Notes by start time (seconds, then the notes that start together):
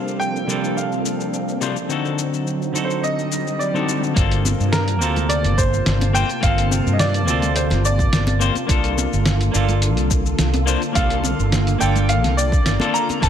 Already playing: C3 F3 G3 A#3 C4 D4 F4 A4 F5
0.08 shaker
0.20 G5, shaker
0.36 shaker
0.47 C3 G3 A#3 D4 F4, shaker
0.51 A4
0.64 shaker
0.77 F5, shaker
0.92 shaker
1.05 shaker
1.20 shaker
1.34 shaker
1.48 shaker
1.61 C3 G3 A#3 D4 F4 C5, shaker
1.76 shaker
1.88 D3 F#3 C4 D#4 F#4, shaker
1.92 A4
2.05 shaker
2.18 shaker
2.34 shaker
2.47 shaker
2.62 shaker
2.73 D3 C4 D#4 F#4, shaker
2.77 A4
2.85 C5
2.90 shaker
3.03 D#5, swell, shaker
3.19 shaker
3.32 shaker
3.47 shaker
3.59 D5, shaker
3.74 D3 C4 D#4 F#4 A4, shaker
3.89 shaker
4.03 shaker
4.15 G1 C3 A#3 C4 F4 A5, kick, closed hi-hat, shaker
4.19 A4
4.32 closed hi-hat, shaker
4.45 high conga, shaker
4.59 G2, shaker
4.72 A#4, snare, closed hi-hat, shaker
4.88 closed hi-hat, shaker
4.99 D2 A#3 C4 F4, shaker
5.03 A4
5.16 closed hi-hat, low conga, shaker
5.29 D5, closed hi-hat, shaker
5.44 G1, closed hi-hat, shaker
5.58 C5, kick, shaker
5.74 shaker
5.86 G1, snare, closed hi-hat, shaker
6.01 closed hi-hat, high conga, shaker
6.13 A#3 C4 F4 C5 G5, shaker
6.30 closed hi-hat, shaker
6.41 G1 A#3 C4 F4 F5, kick, closed hi-hat, shaker
6.45 A4
6.58 closed hi-hat, shaker
6.71 high conga, shaker
6.86 G2, shaker
6.93 D#5
6.99 D5, snare, closed hi-hat, shaker
7.14 closed hi-hat, shaker
7.26 D2 A#3 C4 F4, shaker
7.30 A4
7.42 closed hi-hat, low conga, shaker
7.56 C5, closed hi-hat, shaker
7.70 G1, snare, closed hi-hat, high conga, shaker
7.85 D5, shaker
7.99 kick, shaker
8.12 G1, snare, closed hi-hat, shaker
8.27 closed hi-hat, high conga, shaker
8.40 A#3 C4 F4 C5, shaker
8.55 closed hi-hat, high conga, shaker
8.67 C2 D3 A#3 D4 F4 A4, kick, closed hi-hat, shaker
8.71 A4
8.84 closed hi-hat, shaker
8.98 high conga, shaker
9.13 G1, shaker
9.26 snare, closed hi-hat, shaker
9.41 closed hi-hat, shaker
9.52 G1 A#3 D4 F4, shaker
9.56 A4
9.68 closed hi-hat, low conga, shaker
9.82 closed hi-hat, shaker
9.97 C2, closed hi-hat, shaker
10.11 kick, shaker
10.26 shaker
10.38 C2, snare, closed hi-hat, shaker
10.54 closed hi-hat, high conga, shaker
10.66 A#3 D4 F4 C5, shaker
10.82 closed hi-hat, shaker
10.93 C2 A#3 D4 F4 F5, kick, closed hi-hat, shaker
10.97 A4
11.10 closed hi-hat, shaker
11.24 high conga, shaker
11.39 G1, shaker
11.52 snare, closed hi-hat, shaker
11.67 closed hi-hat, shaker
11.79 G1 A#3 D4 F4 G5, shaker
11.83 A4
11.96 closed hi-hat, low conga, shaker
12.09 F5, closed hi-hat, shaker
12.24 C2, snare, closed hi-hat, high conga, shaker
12.37 D5, shaker
12.52 kick, shaker
12.66 G1, snare, closed hi-hat, shaker
12.80 A#3 D4 F4 A4, closed hi-hat, high conga, shaker
12.94 A#5, shaker
13.09 closed hi-hat, high conga, shaker
13.20 G1 C3 A#3 C4 F4 A5, kick, closed hi-hat, shaker
13.25 A4